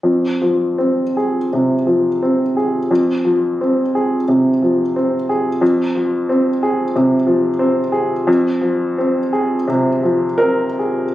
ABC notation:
X:1
M:4/4
L:1/8
Q:1/4=88
K:Fm
V:1 name="Upright piano"
z8 | z8 | z8 | z6 B2 |]
V:2 name="Upright piano" clef=bass
F,, F, C A C, F, C A | F,, F, C A C, F, C A | F,, F, C A C, F, C A | F,, F, C A C, F, C A |]